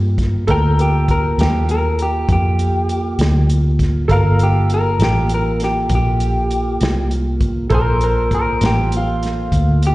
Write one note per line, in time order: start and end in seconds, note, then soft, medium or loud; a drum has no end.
0.00 0.45 G2 medium
0.00 0.44 A#3 medium
0.00 0.45 F4 medium
0.00 0.44 A#4 soft
0.00 0.45 F5 medium
0.00 0.43 A5 soft
0.18 kick medium
0.18 snare soft
0.18 closed hi-hat medium
0.47 1.35 D2 medium
0.47 4.05 A#3 medium
0.47 4.05 F4 medium
0.47 4.05 A4 soft
0.47 4.05 A#4 soft
0.47 4.06 G5 medium
0.47 kick medium
0.47 closed hi-hat medium
0.51 0.79 A#4 medium
0.79 1.09 G4 medium
0.79 closed hi-hat soft
1.08 1.39 A#4 medium
1.08 kick medium
1.08 closed hi-hat medium
1.38 2.26 D#2 medium
1.38 1.69 G4 medium
1.38 snare medium
1.38 closed hi-hat medium
1.69 1.99 A#4 medium
1.69 closed hi-hat medium
1.99 2.30 G4 medium
1.99 closed hi-hat medium
2.29 3.16 F2 medium
2.29 3.47 G4 medium
2.29 kick medium
2.29 closed hi-hat medium
2.59 closed hi-hat medium
2.89 closed hi-hat medium
3.19 4.06 D2 medium
3.19 snare medium
3.19 closed hi-hat medium
3.50 closed hi-hat medium
3.79 kick medium
3.79 snare soft
3.79 closed hi-hat medium
4.08 4.97 G1 medium
4.08 7.68 A#3 medium
4.08 7.68 F4 medium
4.08 7.66 A4 medium
4.08 7.67 A#4 soft
4.08 7.68 F5 medium
4.08 kick medium
4.08 closed hi-hat medium
4.12 4.40 A#4 medium
4.39 closed hi-hat medium
4.43 4.71 G4 medium
4.70 closed hi-hat medium
4.74 5.01 A#4 medium
4.99 5.87 A1 medium
4.99 snare medium
4.99 closed hi-hat medium
5.04 5.31 G4 medium
5.29 closed hi-hat medium
5.34 5.61 A#4 medium
5.60 snare soft
5.60 closed hi-hat medium
5.64 5.91 G4 medium
5.89 6.77 A#1 medium
5.89 kick medium
5.89 closed hi-hat medium
5.95 7.09 G4 medium
6.20 closed hi-hat medium
6.51 closed hi-hat medium
6.81 7.68 C2 medium
6.81 snare loud
6.81 closed hi-hat medium
7.11 closed hi-hat medium
7.41 kick medium
7.41 closed hi-hat medium
7.70 8.58 A#1 medium
7.70 9.95 A#3 medium
7.70 9.95 F4 medium
7.70 9.95 A4 medium
7.70 9.95 A#4 soft
7.70 9.95 C5 medium
7.70 kick medium
7.70 closed hi-hat medium
7.75 8.02 A#4 medium
8.01 8.32 A#4 medium
8.01 closed hi-hat soft
8.31 8.62 A#4 medium
8.31 kick medium
8.31 closed hi-hat medium
8.61 9.49 A1 medium
8.61 snare loud
8.61 closed hi-hat medium
8.66 8.93 G4 medium
8.92 closed hi-hat medium
8.97 9.82 F4 medium
9.23 snare soft
9.23 closed hi-hat medium
9.52 9.95 D2 medium
9.52 kick medium
9.52 closed hi-hat medium
9.83 closed hi-hat medium
9.87 9.95 G4 medium